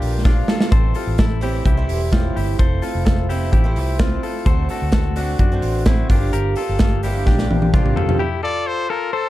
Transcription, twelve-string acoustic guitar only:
0.00 0.23 G2 medium
0.00 0.24 D3 medium
0.00 0.24 F3 medium
0.00 0.25 A#3 medium
0.00 0.25 F4 medium
0.24 0.72 G2 medium
0.24 0.70 D3 medium
0.24 0.71 F3 medium
0.24 0.72 A#3 medium
0.24 0.72 F4 medium
0.70 0.93 E3 medium
0.70 0.94 G3 medium
0.70 0.95 C4 medium
0.70 0.96 E4 medium
0.94 1.41 E3 medium
0.94 1.41 G3 medium
0.94 1.42 C4 medium
0.94 1.42 E4 medium
1.41 1.77 A2 medium
1.41 1.77 E3 medium
1.41 1.77 G3 medium
1.41 1.76 C4 medium
1.41 1.76 E4 medium
1.77 2.10 A2 medium
1.77 2.11 E3 medium
1.77 2.11 G3 medium
1.77 2.12 C4 medium
1.77 2.13 E4 medium
2.12 2.59 A2 medium
2.12 2.58 E3 medium
2.12 2.59 G3 medium
2.12 2.60 C4 medium
2.12 2.60 E4 medium
2.59 2.81 F3 medium
2.59 2.82 A3 medium
2.59 2.83 C4 medium
2.59 2.83 E4 medium
2.82 3.28 F3 medium
2.82 3.30 A3 medium
2.82 3.31 C4 medium
2.82 3.31 E4 medium
3.30 3.65 F3 medium
3.30 3.65 A3 medium
3.30 3.64 C4 medium
3.30 3.63 E4 medium
3.64 3.98 F3 medium
3.64 3.99 A3 medium
3.64 3.99 C4 medium
3.64 3.99 E4 medium
3.99 4.46 F3 medium
3.99 4.46 A3 medium
3.99 4.47 C4 medium
3.99 4.47 E4 medium
4.47 4.69 D3 medium
4.47 4.70 A3 medium
4.47 4.71 C4 medium
4.47 4.71 F#4 medium
4.70 5.16 D3 medium
4.70 5.16 A3 medium
4.70 5.17 C4 medium
4.70 5.18 F#4 medium
5.17 5.52 D3 medium
5.17 5.52 A3 medium
5.17 5.51 C4 medium
5.17 5.51 F#4 loud
5.52 5.86 D3 medium
5.52 5.87 A3 medium
5.52 5.87 C4 medium
5.52 5.87 F#4 medium
5.87 6.09 D3 medium
5.87 6.10 A3 medium
5.87 6.10 C4 medium
5.87 6.11 F#4 medium
6.10 6.57 G2 medium
6.10 6.57 D3 medium
6.10 6.56 F3 medium
6.10 6.57 A#3 medium
6.10 6.58 D4 medium
6.10 6.60 G4 medium
6.58 7.03 F3 medium
6.58 7.04 A#3 medium
6.58 7.04 D4 medium
6.58 7.05 G4 medium
7.04 7.39 G2 medium
7.04 7.39 D3 medium
7.04 7.39 F3 medium
7.04 7.39 A#3 medium
7.04 7.38 D4 medium
7.04 7.38 G4 medium
7.39 7.72 G2 medium
7.39 7.73 D3 medium
7.39 7.73 F3 medium
7.39 7.74 A#3 medium
7.39 7.74 D4 medium
7.39 7.74 G4 medium
7.73 8.20 G2 medium
7.73 8.20 D3 medium
7.73 8.21 F3 medium
7.73 8.21 A#3 medium
7.73 8.21 D4 medium
7.73 8.21 G4 medium

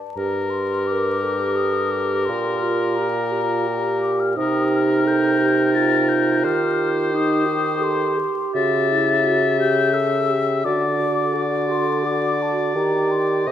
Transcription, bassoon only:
0.17 2.25 G2 soft
2.29 4.33 A#2 soft
4.37 6.46 C3 soft
6.44 8.27 D#3 soft
8.55 10.61 C#3 medium
10.65 12.71 D3 soft
12.75 13.45 D#3 soft
13.47 13.52 C3 soft

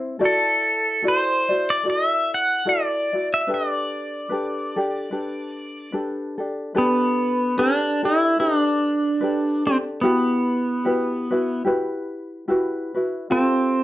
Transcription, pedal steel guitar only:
0.25 1.08 A4 medium
1.08 1.72 C5 medium
1.70 1.87 D5 medium
1.90 2.07 D#5 medium
2.07 2.34 E5 medium
2.34 2.69 F#5 medium
2.69 3.28 D5 medium
3.34 3.51 E5 medium
3.54 5.93 D5 medium
6.78 7.61 B3 medium
7.59 8.02 D4 medium
8.05 8.40 E4 medium
8.40 9.72 D4 medium
9.67 9.77 C4 medium
10.01 11.62 B3 medium
13.32 13.84 C4 medium

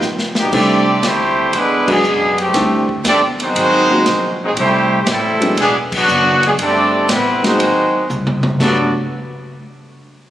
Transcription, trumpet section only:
0.39 0.53 B3 medium
0.39 0.53 D#4 medium
0.39 0.53 G4 medium
0.55 1.04 C4 medium
0.55 1.04 G4 loud
0.55 1.04 A4 medium
0.55 1.04 D5 loud
1.06 1.55 A3 medium
1.06 1.55 E4 medium
1.06 1.55 G4 medium
1.06 1.55 C5 loud
1.56 1.90 G#3 loud
1.56 1.90 D4 loud
1.56 1.90 E4 medium
1.56 1.89 B4 loud
1.90 2.40 B3 medium
1.90 2.40 D4 medium
1.90 2.40 G#4 loud
2.41 2.87 A3 medium
2.41 2.87 C4 medium
2.41 2.87 G4 medium
3.07 3.23 C4 medium
3.07 3.22 G4 medium
3.07 3.23 A4 loud
3.07 3.22 D5 loud
3.42 4.38 G#3 loud
3.42 4.38 D#4 loud
3.42 4.38 F#4 loud
3.42 4.38 C5 loud
4.44 4.50 F#3 medium
4.44 4.50 C4 medium
4.44 4.50 D#4 medium
4.44 4.51 G#4 loud
4.59 5.01 A3 medium
4.59 5.01 E4 medium
4.59 5.01 G4 medium
4.59 5.01 C5 loud
5.03 5.07 G4 medium
5.11 5.59 G3 medium
5.11 5.59 C4 medium
5.11 5.59 E4 medium
5.11 5.59 A4 loud
5.60 5.75 B3 medium
5.60 5.76 D4 loud
5.60 5.75 G#4 loud
5.97 6.42 B3 medium
5.97 6.42 D4 medium
5.97 6.42 F#4 loud
6.47 6.53 B3 medium
6.47 6.53 D4 medium
6.47 6.53 G#4 medium
6.62 7.07 C4 medium
6.62 7.08 G4 medium
6.62 7.08 A4 medium
6.62 7.08 D5 medium
7.11 7.45 G3 medium
7.11 7.45 C4 medium
7.11 7.45 E4 medium
7.11 7.45 B4 loud
7.46 8.07 G#3 medium
7.46 8.07 D#4 medium
7.46 8.07 F#4 medium
7.46 8.07 C5 loud
8.61 8.94 B3 medium
8.61 8.94 F#4 medium
8.61 8.94 A4 medium
8.61 8.94 D5 medium

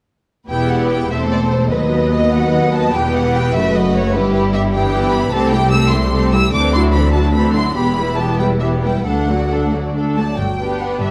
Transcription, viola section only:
0.49 1.08 B3 soft
0.49 1.07 E4 soft
1.12 1.73 A3 soft
1.12 1.73 C4 soft
1.74 2.34 F#3 soft
1.74 2.93 B3 soft
2.35 2.94 F#3 soft
2.95 3.55 E3 soft
2.95 3.54 B3 soft
3.56 4.16 A3 soft
4.16 4.74 G3 soft
4.74 5.33 E3 medium
4.74 5.33 B3 medium
5.33 5.52 A3 soft
5.33 5.52 C4 medium
5.53 5.73 G3 soft
5.53 5.71 A3 soft
5.72 5.93 A3 soft
5.72 5.93 C4 soft
5.94 6.14 G3 soft
5.94 6.13 A3 soft
6.14 6.33 A3 soft
6.14 6.33 C4 soft
6.34 6.54 G3 soft
6.34 6.54 A3 soft
6.53 6.73 E3 soft
6.53 6.73 C4 soft
6.75 6.95 F#3 soft
6.75 6.95 D4 soft
6.94 7.15 E3 soft
6.94 7.15 C4 soft
7.15 7.36 F#3 soft
7.15 7.35 D4 soft
7.35 7.55 E3 soft
7.35 7.54 C4 soft
7.56 7.77 F#3 soft
7.56 7.77 D4 soft
7.78 7.97 E3 soft
7.78 7.97 B3 soft
7.99 8.19 G3 soft
8.19 8.40 E3 soft
8.19 8.41 B3 soft
8.40 8.62 G3 soft
8.62 8.83 E3 soft
8.62 8.82 B3 soft
8.85 9.07 G3 soft
9.08 9.28 A3 soft
9.08 9.28 D4 soft
9.29 9.52 F#3 soft
9.29 9.51 A3 soft
9.52 9.71 A3 soft
9.52 9.73 D4 soft
9.72 9.95 F#3 soft
9.72 9.93 A3 soft
9.94 10.15 A3 soft
9.94 10.15 D4 soft
10.17 10.39 F#3 soft
10.17 10.39 A3 soft
10.59 11.11 B3 soft
10.59 11.11 D4 soft

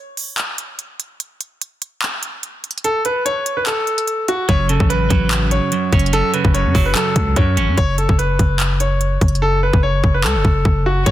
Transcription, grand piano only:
2.84 3.01 A4 medium
3.05 3.22 B4 medium
3.25 3.55 C#5 medium
3.57 3.65 B4 medium
3.66 4.24 A4 medium
4.28 4.45 F#4 medium
4.49 4.65 C#5 loud
4.69 4.86 A4 medium
4.90 5.48 B4 medium
5.51 6.09 C#5 medium
6.13 6.30 A4 loud
6.34 6.50 B4 medium
6.54 6.84 C#5 medium
6.86 6.93 B4 medium
6.95 7.34 A4 medium
7.37 7.75 C#5 medium
7.77 7.94 C#5 loud
7.98 8.15 A4 medium
8.19 8.77 B4 medium
8.80 9.38 C#5 medium
9.42 9.58 A4 medium
9.63 9.79 B4 medium
9.83 10.13 C#5 medium
10.14 10.22 B4 medium
10.24 10.82 A4 medium
10.86 11.02 F#4 medium
11.06 11.11 C#5 loud

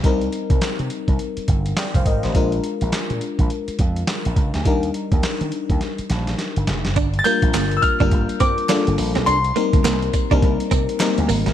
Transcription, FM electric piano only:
0.04 2.31 G3 medium
0.04 2.31 C4 medium
0.04 2.31 D#4 medium
0.04 1.75 A#4 medium
1.78 1.94 D5 medium
1.78 1.94 G5 medium
1.95 2.06 C5 medium
1.95 2.06 F5 medium
2.07 2.23 A#4 medium
2.07 2.23 D#5 medium
2.24 2.52 G4 medium
2.24 2.51 C5 medium
2.34 4.61 G#3 medium
2.34 4.62 D4 medium
2.34 4.62 F4 medium
2.34 4.62 A#4 medium
4.65 6.92 G3 medium
4.65 6.92 D4 medium
4.65 6.93 D#4 medium
4.65 6.93 A#4 medium
7.25 7.93 G3 medium
7.25 7.93 A#3 medium
7.25 7.93 D4 medium
7.25 7.93 F4 medium
7.25 7.94 A#4 medium
8.01 8.65 G3 medium
8.01 8.65 A#3 medium
8.01 8.65 D4 medium
8.01 8.65 F4 medium
8.01 8.65 A#4 medium
8.70 9.27 G3 medium
8.70 9.27 A#3 medium
8.70 9.27 D4 medium
8.70 9.28 F4 medium
8.70 9.28 A4 medium
9.56 10.24 G3 medium
9.56 10.24 A#3 medium
9.56 10.24 C4 medium
9.56 10.24 D#4 medium
9.56 10.24 A#4 medium
10.31 10.95 G3 medium
10.31 10.95 A#3 medium
10.31 10.96 C4 medium
10.31 10.96 D#4 medium
10.31 10.96 A#4 loud
11.00 11.53 G3 medium
11.00 11.53 A#3 medium
11.00 11.53 C4 medium
11.00 11.53 D#4 medium
11.00 11.53 A#4 medium

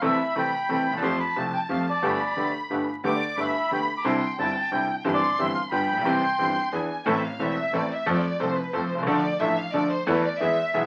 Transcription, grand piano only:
0.01 0.16 C2 medium
0.01 0.16 C3 medium
0.01 0.16 E3 medium
0.01 0.16 A3 medium
0.01 0.16 C4 medium
0.01 0.16 A4 medium
0.35 0.50 C2 soft
0.35 0.50 C3 soft
0.35 0.50 E3 soft
0.35 0.50 A3 soft
0.35 0.50 C4 soft
0.35 0.50 A4 soft
0.69 0.83 C2 soft
0.69 0.83 C3 soft
0.69 0.83 E3 soft
0.69 0.83 A3 soft
0.69 0.83 C4 soft
0.69 0.84 A4 soft
0.90 0.95 D2 soft
0.90 0.98 D#2 soft
0.98 1.02 E2 medium
1.02 1.17 F2 medium
1.02 1.17 F3 medium
1.02 1.17 A3 medium
1.02 1.17 C4 medium
1.02 1.17 G4 medium
1.36 1.51 C2 soft
1.36 1.50 C3 soft
1.36 1.50 F3 soft
1.36 1.50 A3 soft
1.36 1.50 C4 soft
1.36 1.51 G4 soft
1.69 1.84 F2 soft
1.69 1.84 F3 soft
1.69 1.84 A3 soft
1.69 1.84 C4 soft
1.69 1.84 G4 soft
2.02 2.17 G1 medium
2.02 2.17 G2 medium
2.02 2.17 D3 medium
2.02 2.17 A3 medium
2.02 2.17 B3 medium
2.02 2.17 G4 medium
2.36 2.51 D2 soft
2.36 2.51 D3 soft
2.36 2.51 A3 soft
2.36 2.51 B3 soft
2.36 2.51 G4 soft
2.70 2.85 G1 soft
2.70 2.85 G2 soft
2.70 2.85 D3 soft
2.70 2.85 A3 soft
2.70 2.85 B3 soft
2.70 2.85 G4 soft
3.04 3.18 D2 medium
3.04 3.18 D3 medium
3.04 3.18 A3 medium
3.04 3.18 B3 medium
3.04 3.19 G4 medium
3.37 3.52 G1 soft
3.37 3.52 G2 soft
3.37 3.52 D3 soft
3.37 3.52 A3 soft
3.37 3.52 B3 soft
3.37 3.52 G4 soft
3.71 3.86 D2 soft
3.71 3.86 D3 soft
3.71 3.86 A3 soft
3.71 3.86 B3 soft
3.71 3.86 G4 soft
4.04 4.19 C2 medium
4.04 4.19 C3 medium
4.04 4.19 D3 medium
4.04 4.19 G3 medium
4.04 4.19 C4 medium
4.04 4.19 E4 medium
4.38 4.53 G1 soft
4.38 4.53 G2 soft
4.38 4.52 D3 soft
4.38 4.53 G3 soft
4.38 4.53 C4 soft
4.38 4.53 E4 soft
4.71 4.86 C2 soft
4.71 4.86 C3 soft
4.71 4.86 D3 soft
4.71 4.86 G3 soft
4.71 4.86 C4 soft
4.71 4.86 E4 soft
5.05 5.19 G1 medium
5.05 5.19 G2 medium
5.05 5.19 E3 medium
5.05 5.19 G3 medium
5.05 5.19 C4 medium
5.05 5.19 G4 medium
5.39 5.53 G1 soft
5.39 5.53 G2 soft
5.39 5.53 E3 soft
5.39 5.53 G3 soft
5.39 5.53 C4 soft
5.39 5.53 G4 soft
5.71 5.86 G1 soft
5.71 5.86 G2 soft
5.71 5.86 D3 soft
5.71 5.86 G3 soft
5.71 5.86 B3 soft
5.71 5.86 F4 soft
5.93 5.98 A1 soft
5.93 6.02 A#1 medium
6.01 6.06 B1 medium
6.01 6.20 E3 medium
6.01 6.20 G3 medium
6.05 6.20 C2 medium
6.05 6.20 C3 medium
6.05 6.20 C4 medium
6.05 6.20 G4 medium
6.39 6.54 G1 soft
6.39 6.53 G2 soft
6.39 6.53 E3 soft
6.39 6.54 G3 soft
6.39 6.53 C4 soft
6.39 6.54 G4 soft
6.72 6.87 E2 soft
6.72 6.87 E3 soft
6.72 6.87 B3 soft
6.72 6.87 D4 soft
6.72 6.87 G#4 soft
7.06 7.20 A1 medium
7.06 7.20 A2 medium
7.06 7.20 E3 medium
7.06 7.21 A3 medium
7.06 7.21 C4 medium
7.06 7.21 A4 medium
7.39 7.54 E1 medium
7.39 7.54 E2 medium
7.39 7.54 E3 soft
7.39 7.54 A3 soft
7.39 7.54 C4 soft
7.39 7.54 A4 soft
7.73 7.87 A1 medium
7.73 7.88 A2 medium
7.73 7.87 E3 soft
7.73 7.87 A3 soft
7.73 7.88 C4 soft
7.73 7.88 A4 soft
8.06 8.21 F2 medium
8.06 8.21 F3 medium
8.06 8.21 A3 medium
8.06 8.21 C4 medium
8.06 8.21 A4 medium
8.40 8.54 C2 medium
8.40 8.54 C3 medium
8.40 8.54 F3 soft
8.40 8.54 A3 soft
8.40 8.54 C4 soft
8.40 8.54 A4 medium
8.73 8.88 F2 medium
8.73 8.88 F3 medium
8.73 8.88 A3 soft
8.73 8.88 C4 soft
8.73 8.88 A4 medium
8.94 8.99 B1 soft
8.94 9.03 C2 medium
9.03 9.07 C#2 medium
9.03 9.21 D3 medium
9.03 9.21 F3 medium
9.03 9.21 A3 medium
9.07 9.21 D2 medium
9.07 9.21 D4 medium
9.07 9.21 A4 medium
9.40 9.55 A1 medium
9.40 9.55 A2 medium
9.40 9.54 F3 soft
9.40 9.55 A3 soft
9.40 9.55 D4 soft
9.40 9.55 A4 soft
9.73 9.88 D2 medium
9.73 9.88 D3 medium
9.73 9.88 F3 soft
9.73 9.88 A3 soft
9.73 9.88 D4 soft
9.73 9.88 A4 medium
10.07 10.21 E2 medium
10.07 10.21 E3 medium
10.07 10.21 A3 medium
10.07 10.21 B3 medium
10.07 10.21 A4 medium
10.40 10.55 E2 medium
10.40 10.55 E3 medium
10.40 10.55 G#3 soft
10.40 10.55 B3 soft
10.40 10.55 G#4 medium
10.74 10.86 B1 medium
10.74 10.86 B2 medium
10.74 10.86 E3 soft
10.74 10.86 G#3 soft
10.74 10.86 B3 soft
10.74 10.86 G#4 medium

